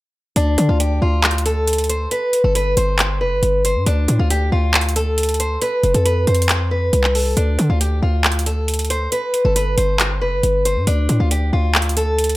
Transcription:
0.36 808-style bass D2, steel-string acoustic guitar D4, closed hi-hat
0.58 808-style bass D3, closed hi-hat
0.69 808-style bass D2, steel-string acoustic guitar F4
0.80 steel-string acoustic guitar G4, closed hi-hat
1.02 808-style bass D2, steel-string acoustic guitar F4
1.24 clap, closed hi-hat
1.31 closed hi-hat
1.38 closed hi-hat
1.46 steel-string acoustic guitar A4, closed hi-hat
1.67 closed hi-hat
1.73 closed hi-hat
1.78 closed hi-hat
1.84 closed hi-hat
1.89 steel-string acoustic guitar C5, closed hi-hat
2.11 steel-string acoustic guitar B4, closed hi-hat
2.33 closed hi-hat
2.44 808-style bass G1, steel-string acoustic guitar A4
2.55 steel-string acoustic guitar B4, closed hi-hat
2.77 808-style bass G1, steel-string acoustic guitar C5, closed hi-hat
2.99 clap, closed hi-hat
3.21 808-style bass F1, steel-string acoustic guitar B4
3.32 808-style bass G1
3.43 808-style bass G1, closed hi-hat
3.65 steel-string acoustic guitar C5, closed hi-hat
3.75 808-style bass G2
3.86 808-style bass D2, steel-string acoustic guitar D4, closed hi-hat
4.08 808-style bass A2, closed hi-hat
4.19 808-style bass D2, steel-string acoustic guitar F4
4.30 steel-string acoustic guitar G4, closed hi-hat
4.52 808-style bass D2, steel-string acoustic guitar F4
4.74 clap, closed hi-hat
4.81 closed hi-hat
4.89 closed hi-hat
4.96 steel-string acoustic guitar A4, closed hi-hat
5.18 closed hi-hat
5.23 closed hi-hat
5.29 closed hi-hat
5.34 closed hi-hat
5.40 steel-string acoustic guitar C5, closed hi-hat
5.62 steel-string acoustic guitar B4, closed hi-hat
5.83 808-style bass F1, closed hi-hat
5.94 808-style bass F2, steel-string acoustic guitar A4, closed hi-hat
6.05 steel-string acoustic guitar B4, closed hi-hat
6.27 808-style bass F2, steel-string acoustic guitar C5, closed hi-hat
6.35 closed hi-hat
6.42 closed hi-hat
6.49 clap, closed hi-hat
6.71 steel-string acoustic guitar B4
6.93 808-style bass C2, closed hi-hat
7.04 clap
7.15 steel-string acoustic guitar A4, open hi-hat
7.37 808-style bass D2, steel-string acoustic guitar D4, closed hi-hat
7.59 808-style bass D3, closed hi-hat
7.70 808-style bass D2, steel-string acoustic guitar F4
7.81 steel-string acoustic guitar G4, closed hi-hat
8.02 808-style bass D2, steel-string acoustic guitar F4
8.24 clap, closed hi-hat
8.32 closed hi-hat
8.39 closed hi-hat
8.46 steel-string acoustic guitar A4, closed hi-hat
8.68 closed hi-hat
8.74 closed hi-hat
8.79 closed hi-hat
8.85 closed hi-hat
8.90 steel-string acoustic guitar C5, closed hi-hat
9.12 steel-string acoustic guitar B4, closed hi-hat
9.34 closed hi-hat
9.45 808-style bass G1, steel-string acoustic guitar A4
9.56 steel-string acoustic guitar B4, closed hi-hat
9.78 808-style bass G1, steel-string acoustic guitar C5, closed hi-hat
10.00 clap, closed hi-hat
10.21 808-style bass F1, steel-string acoustic guitar B4
10.32 808-style bass G1
10.43 808-style bass G1, closed hi-hat
10.65 steel-string acoustic guitar C5, closed hi-hat
10.76 808-style bass G2
10.87 808-style bass D2, steel-string acoustic guitar D4, closed hi-hat
11.09 808-style bass A2, closed hi-hat
11.20 808-style bass D2, steel-string acoustic guitar F4
11.31 steel-string acoustic guitar G4, closed hi-hat
11.53 808-style bass D2, steel-string acoustic guitar F4
11.75 clap, closed hi-hat
11.82 closed hi-hat
11.89 closed hi-hat
11.97 steel-string acoustic guitar A4, closed hi-hat
12.19 closed hi-hat
12.24 closed hi-hat
12.29 closed hi-hat

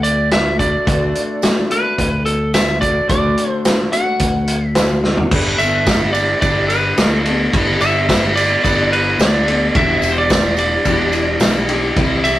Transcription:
Already playing: fingered electric bass D2, steel-string acoustic guitar A3 D4 F#4
0.03 lead electric guitar D5, closed hi-hat
0.30 steel-string acoustic guitar D3 A3 D4 F#4, lead electric guitar E5, snare, closed hi-hat
0.57 steel-string acoustic guitar A3 D4 F#4, lead electric guitar D5, kick, closed hi-hat
0.85 fingered electric bass D2, steel-string acoustic guitar D3 A3 D4 F#4, kick, closed hi-hat
1.15 closed hi-hat
1.42 steel-string acoustic guitar D3 A3 D4 F#4, snare, closed hi-hat, tambourine
1.69 steel-string acoustic guitar A3 D4 F#4, lead electric guitar B4, closed hi-hat
1.98 fingered electric bass D2, kick, closed hi-hat
2.26 lead electric guitar A4, closed hi-hat
2.53 steel-string acoustic guitar D3 A3 D4 F#4, lead electric guitar E5, snare, closed hi-hat, tambourine
2.81 steel-string acoustic guitar A3 D4 F#4, lead electric guitar D5, kick, closed hi-hat
3.09 fingered electric bass D2, steel-string acoustic guitar D3 A3 D4 F#4, lead electric guitar D5, kick, closed hi-hat
3.38 closed hi-hat
3.50 lead electric guitar C5
3.65 steel-string acoustic guitar D3 A3 D4 F#4, snare, closed hi-hat, tambourine
3.93 steel-string acoustic guitar A3 D4 F#4, lead electric guitar F#5, closed hi-hat
4.19 fingered electric bass D2, kick, closed hi-hat
4.47 closed hi-hat
4.67 lead electric guitar E5
4.75 steel-string acoustic guitar D3 A3 D4, snare, closed hi-hat, tambourine
4.79 steel-string acoustic guitar F#4
5.04 steel-string acoustic guitar A3 D4 F#4, snare
5.17 floor tom
5.31 fingered electric bass G1, steel-string acoustic guitar G3 B3 D4 A4, kick, crash, tambourine
5.58 fingered electric bass G1, steel-string acoustic guitar B3 D4 A4, lead electric guitar E5, ride, tambourine
5.87 steel-string acoustic guitar G3 B3 D4 A4, kick, snare, ride, tambourine
6.13 lead electric guitar D5, ride, tambourine
6.41 fingered electric bass G1, steel-string acoustic guitar G3 B3 D4 A4, lead electric guitar D5, kick, ride, tambourine
6.68 lead electric guitar B4, ride, tambourine
6.97 fingered electric bass D2, steel-string acoustic guitar G3 B3, snare, ride, tambourine
7.02 steel-string acoustic guitar D4 A4
7.09 lead electric guitar A4
7.26 steel-string acoustic guitar B3 D4 A4, ride
7.53 fingered electric bass G1, steel-string acoustic guitar G3 B3 D4 A4, kick, ride, tambourine
7.80 fingered electric bass G1, lead electric guitar E5, ride, tambourine
8.08 steel-string acoustic guitar G3 B3 D4 A4, kick, snare, ride, tambourine
8.36 lead electric guitar D5, ride, tambourine
8.64 fingered electric bass G1, steel-string acoustic guitar G3 B3 D4 A4, lead electric guitar D5, kick, ride, tambourine
8.92 lead electric guitar B4, ride
9.18 fingered electric bass D2, steel-string acoustic guitar G3 B3 D4 A4, lead electric guitar D5, snare, ride, tambourine
9.47 steel-string acoustic guitar B3 D4 A4, ride
9.74 fingered electric bass E1, steel-string acoustic guitar E2 B2 E3 G3 D4 G4, lead electric guitar E5, kick, ride, tambourine
10.02 fingered electric bass E1, ride, tambourine
10.11 lead electric guitar C5
10.18 lead electric guitar D5
10.29 steel-string acoustic guitar E3 G3 D4 G4, kick, snare, ride, tambourine
10.57 lead electric guitar D5, ride, tambourine
10.84 fingered electric bass E1, steel-string acoustic guitar E2 B2 E3 G3 D4 G4, kick, ride, tambourine
11.12 ride, tambourine
11.40 fingered electric bass B1, steel-string acoustic guitar E3 G3 D4 G4, snare, ride, tambourine
11.68 steel-string acoustic guitar E3 G3 D4 G4, ride
11.96 fingered electric bass C2, steel-string acoustic guitar C3 E3 G3 E4 G4, kick, ride, tambourine
12.24 fingered electric bass C2, steel-string acoustic guitar G3 E4 G4, lead electric guitar E5, ride, tambourine

